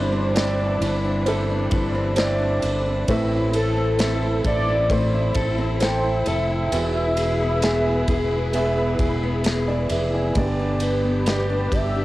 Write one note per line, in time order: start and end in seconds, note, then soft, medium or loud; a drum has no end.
0.00 0.77 G1 medium
0.00 0.77 G2 medium
0.00 3.04 E3 medium
0.00 0.77 G3 medium
0.00 1.26 G3 medium
0.00 0.31 C4 medium
0.00 6.68 C4 medium
0.00 0.58 D4 medium
0.00 3.05 D4 medium
0.00 0.31 E4 medium
0.00 0.35 E4 medium
0.00 1.69 C5 loud
0.00 0.32 D5 medium
0.12 1.94 C4 medium
0.34 1.21 C4 medium
0.34 1.22 E4 medium
0.34 0.82 E4 medium
0.34 1.22 D5 medium
0.34 snare loud
0.34 ride medium
0.59 1.03 D4 medium
0.81 1.68 G1 loud
0.81 1.72 E4 medium
0.81 ride medium
1.04 1.49 D4 medium
1.26 3.18 G3 medium
1.26 2.13 C4 medium
1.26 2.13 E4 medium
1.26 2.14 A4 medium
1.26 ride medium
1.50 2.38 D4 medium
1.71 2.59 G1 medium
1.71 2.18 E4 medium
1.71 kick medium
1.71 ride medium
1.95 3.76 C4 medium
2.16 3.03 C4 medium
2.16 3.04 E4 medium
2.16 2.63 E4 medium
2.16 3.04 D5 loud
2.16 snare loud
2.16 ride medium
2.40 2.85 D4 medium
2.62 3.05 G1 medium
2.62 3.32 E4 medium
2.62 ride medium
2.86 3.18 D4 medium
3.07 4.40 A1 medium
3.07 4.90 A2 medium
3.07 4.41 A2 medium
3.07 4.41 E3 medium
3.07 6.68 A3 medium
3.07 3.95 C4 medium
3.07 10.31 E4 medium
3.07 3.95 A4 medium
3.07 3.96 E5 medium
3.07 kick medium
3.07 ride medium
3.32 4.22 E4 medium
3.53 3.98 A4 medium
3.53 4.42 A4 loud
3.53 ride medium
3.77 5.57 C4 medium
3.99 4.85 C4 medium
3.99 4.44 A4 medium
3.99 4.86 A4 medium
3.99 4.86 E5 medium
3.99 snare loud
3.99 ride medium
4.22 4.68 E4 medium
4.44 5.32 A1 loud
4.44 5.34 A4 medium
4.44 5.33 D5 loud
4.44 kick medium
4.44 ride medium
4.68 5.14 E4 medium
4.90 6.72 A2 medium
4.90 5.76 C4 medium
4.90 5.77 A4 medium
4.90 5.77 C5 medium
4.90 kick medium
4.90 ride medium
5.14 6.03 E4 medium
5.35 6.22 A1 medium
5.35 5.80 A4 medium
5.35 kick medium
5.35 ride medium
5.58 6.81 C4 medium
5.80 6.67 C4 medium
5.80 6.26 A4 medium
5.80 6.68 A4 medium
5.80 6.29 C5 loud
5.80 6.68 G5 medium
5.80 snare loud
5.80 ride medium
6.04 6.50 E4 medium
6.26 6.69 F1 medium
6.26 6.81 A4 medium
6.26 9.00 E5 loud
6.26 ride medium
6.50 6.94 E4 medium
6.71 8.04 E1 medium
6.71 8.53 E2 medium
6.71 8.04 B2 medium
6.71 10.32 E3 medium
6.71 7.58 B3 medium
6.71 10.32 G#4 medium
6.71 7.59 G#4 medium
6.71 10.32 B4 medium
6.71 7.59 E5 medium
6.71 ride medium
6.95 7.85 E4 medium
7.17 7.62 G#4 medium
7.17 ride medium
7.40 9.23 B3 medium
7.62 8.49 B3 medium
7.62 8.08 G#4 medium
7.62 8.50 G#4 medium
7.62 8.50 E5 loud
7.62 snare loud
7.62 ride medium
7.86 8.30 E4 medium
8.08 8.95 E1 medium
8.08 8.99 G#4 medium
8.08 kick medium
8.08 ride medium
8.31 8.76 E4 medium
8.53 10.36 E2 medium
8.53 9.40 B3 medium
8.53 9.40 G#4 medium
8.53 9.41 E5 medium
8.53 ride medium
8.77 9.67 E4 medium
8.99 9.86 E1 medium
8.99 9.45 G#4 medium
8.99 kick medium
8.99 ride soft
9.23 11.04 B3 medium
9.44 9.90 G#4 medium
9.44 snare loud
9.44 ride medium
9.68 10.13 E4 medium
9.68 9.90 G#4 medium
9.68 9.89 D5 medium
9.90 10.32 F1 medium
9.90 10.45 G#4 medium
9.90 10.13 B4 medium
9.90 10.12 E5 medium
9.90 ride medium
10.14 10.45 E4 medium
10.14 10.36 D5 soft
10.14 10.57 G#5 medium
10.34 11.68 G1 medium
10.34 11.68 G2 medium
10.34 12.05 G2 medium
10.34 12.05 B2 medium
10.34 11.69 D3 medium
10.34 11.22 B3 medium
10.34 12.05 D4 medium
10.34 12.05 G4 medium
10.34 11.23 G4 medium
10.34 kick loud
10.34 ride medium
10.38 11.23 D5 medium
10.59 11.49 D4 medium
10.80 11.26 G4 medium
10.80 11.74 B4 medium
10.80 ride medium
11.05 12.05 B3 soft
11.26 12.05 B3 medium
11.26 11.71 G4 medium
11.26 12.05 G4 medium
11.26 12.05 D5 medium
11.26 snare loud
11.26 ride medium
11.50 11.95 D4 medium
11.72 12.05 G1 medium
11.72 12.05 G4 medium
11.72 12.05 E5 loud
11.72 kick medium
11.72 ride medium
11.95 12.05 D4 medium